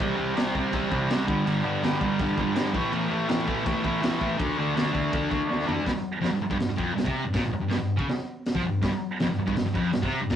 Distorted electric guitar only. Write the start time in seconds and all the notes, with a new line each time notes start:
0.00 C3 G3 C4
0.16 C3 G3 C4
0.34 C3 G3 C4
0.55 C3 G3 C4
0.71 C3 G3 C4
0.91 C3 G3 C4
1.09 C3 G3 C4
1.26 G2 D3 G3
1.45 G2 D3 G3
1.64 G2 D3 G3
1.83 G2 D3 G3
2.01 G2 D3 G3
2.20 G2 D3 G3
2.38 G2 D3 G3
2.55 G2 D3 G3
2.74 A2 E3 A3
2.92 A2 E3 A3
3.10 A2 E3 A3
3.29 A2 E3 A3
3.47 A2 E3 A3
3.66 A2 E3 A3
3.84 A2 E3 A3
4.02 A2 E3 A3
4.19 A2 E3 A3
4.38 D3 A3 D4
4.58 D3 A3 D4
4.75 D3 A3 D4
4.93 D3 A3 D4
5.11 D3 A3 D4
5.30 D3 A3 D4
5.47 D3 A3 D4
5.66 D3 A3 D4
5.83 G2
5.93 muted distorted electric guitar stroke
6.21 F2
6.31 G2
6.41 muted distorted electric guitar stroke
6.50 G2
6.59 G2
6.69 G2
6.76 F2
6.95 G2
7.04 C3
7.24 G2
7.33 A#2
7.44 muted distorted electric guitar stroke
7.52 muted distorted electric guitar stroke
7.60 G2
7.69 G2
7.79 G2
7.96 C#3
8.55 F3
8.63 G2
8.82 G2
8.92 muted distorted electric guitar stroke
9.21 F2
9.29 G2
9.38 muted distorted electric guitar stroke
9.46 G2
9.56 G2
9.65 G2
9.74 F2
9.93 G2
10.02 C3
10.21 G2
10.30 A#2